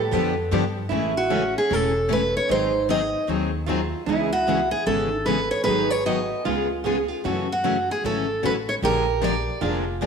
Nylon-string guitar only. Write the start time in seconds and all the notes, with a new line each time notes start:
Already playing: A4
0.12 B4
0.89 E4
1.30 C#4
2.49 D#4
3.66 F4
4.06 E4
5.15 D4
5.64 G#4
6.06 F#4
6.45 F4
6.86 G#4
7.08 F4
7.25 F#4
8.83 G4
9.61 F4